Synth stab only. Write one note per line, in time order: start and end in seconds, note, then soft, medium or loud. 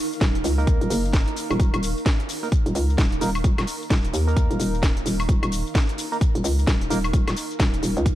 0.58 2.40 A#3 medium
0.58 2.40 D#4 medium
0.58 2.40 A#4 loud
2.43 2.48 A#3 medium
2.43 2.48 D#4 medium
2.43 2.48 A#4 medium
3.21 3.30 A#3 medium
3.21 3.30 D#4 medium
3.21 3.30 A#4 loud
4.27 6.09 A#3 medium
4.27 6.09 D#4 medium
4.27 6.09 A#4 loud
6.12 6.18 A#3 medium
6.12 6.18 D#4 medium
6.12 6.18 A#4 medium
6.90 6.99 A#3 medium
6.90 6.99 D#4 medium
6.90 6.99 A#4 loud